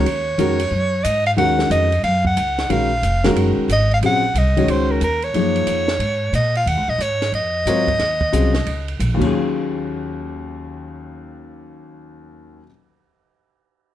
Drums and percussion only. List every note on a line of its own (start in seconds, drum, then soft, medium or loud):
0.06 ride medium
0.39 hi-hat pedal medium
0.39 ride medium
0.59 ride medium
1.04 hi-hat pedal medium
1.04 ride medium
1.26 ride soft
1.38 ride medium
1.59 snare medium
1.71 hi-hat pedal medium
1.71 ride medium
1.92 ride soft
2.04 ride medium
2.25 kick medium
2.37 hi-hat pedal soft
2.37 ride medium
2.58 snare soft
2.58 ride soft
2.70 ride medium
3.03 hi-hat pedal soft
3.03 ride medium
3.24 snare medium
3.24 ride medium
3.36 ride medium
3.69 hi-hat pedal medium
3.69 ride medium
3.91 ride soft
4.03 ride medium
4.35 hi-hat pedal soft
4.35 ride medium
4.57 ride soft
4.68 ride medium
5.01 hi-hat pedal medium
5.01 ride medium
5.22 ride soft
5.34 ride medium
5.56 ride soft
5.67 hi-hat pedal medium
5.67 ride medium
5.88 snare medium
6.00 ride medium
6.33 hi-hat pedal soft
6.33 ride medium
6.55 ride soft
6.67 ride medium
7.00 hi-hat pedal medium
7.00 ride medium
7.22 snare soft
7.22 ride soft
7.33 ride soft
7.67 hi-hat pedal medium
7.67 ride medium
7.88 kick medium
7.88 ride soft
7.99 snare soft
7.99 ride soft
8.21 kick medium
8.33 hi-hat pedal medium
8.33 ride medium
8.54 snare medium
8.54 ride soft
8.66 ride medium
8.88 ride soft
9.00 hi-hat pedal soft
9.00 ride medium
9.21 kick soft
9.21 crash medium